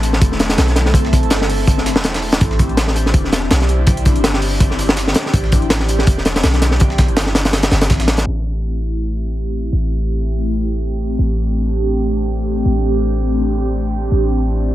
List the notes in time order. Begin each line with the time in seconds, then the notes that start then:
Already playing: A1 A3 C4 E4 A4
0.03 closed hi-hat
0.13 snare
0.21 E1, kick, closed hi-hat
0.32 snare
0.39 snare, closed hi-hat
0.49 snare, closed hi-hat
0.58 B1, snare, closed hi-hat
0.68 snare, closed hi-hat
0.76 snare, closed hi-hat
0.85 snare
0.94 kick, closed hi-hat
1.05 snare
1.13 kick, closed hi-hat
1.23 G1, closed hi-hat
1.30 snare, closed hi-hat
1.41 snare
1.50 closed hi-hat, open hi-hat
1.67 kick, closed hi-hat
1.78 snare
1.86 snare, closed hi-hat
1.96 E1, snare
2.04 snare, closed hi-hat
2.14 snare, closed hi-hat
2.22 open hi-hat
2.32 snare, closed hi-hat
2.41 A1 D4 G4, kick, closed hi-hat
2.51 snare
2.59 kick, closed hi-hat
2.69 closed hi-hat
2.77 snare, closed hi-hat
2.87 snare
2.96 closed hi-hat
3.06 snare
3.14 E1, kick, closed hi-hat
3.24 snare
3.32 snare, closed hi-hat
3.51 B1, snare, closed hi-hat
3.61 snare, closed hi-hat
3.69 closed hi-hat
3.87 kick, closed hi-hat
3.97 closed hi-hat
4.05 kick, snare, closed hi-hat
4.16 G1, closed hi-hat
4.24 snare, closed hi-hat
4.34 snare
4.42 closed hi-hat, open hi-hat
4.60 kick, closed hi-hat
4.71 snare
4.79 closed hi-hat, open hi-hat
4.89 snare
4.97 snare, closed hi-hat
5.07 snare
5.14 snare, closed hi-hat
5.26 snare
5.34 A1, kick, closed hi-hat
5.44 snare
5.52 kick, closed hi-hat
5.62 closed hi-hat
5.70 snare, closed hi-hat
5.80 snare
5.89 closed hi-hat
5.99 snare
6.07 E1, kick, closed hi-hat
6.18 snare
6.25 snare, closed hi-hat
6.36 snare, closed hi-hat
6.43 B1, snare, closed hi-hat
6.54 snare, closed hi-hat
6.62 snare, closed hi-hat
6.71 snare
6.80 kick, closed hi-hat
6.90 snare
6.98 kick, snare, closed hi-hat
7.08 G1, closed hi-hat
7.17 snare, closed hi-hat
7.26 snare
7.35 snare, closed hi-hat
7.45 snare, closed hi-hat
7.53 snare, closed hi-hat
7.63 snare, closed hi-hat
7.71 G1, snare, closed hi-hat
7.81 snare, closed hi-hat
7.90 A1, kick, snare, closed hi-hat
8.00 snare, closed hi-hat
8.08 snare, closed hi-hat
8.17 snare, closed hi-hat
8.26 A1 A3 C4 E4 G4
9.73 A1
11.19 A1 D4
12.65 A1
14.12 A1 E4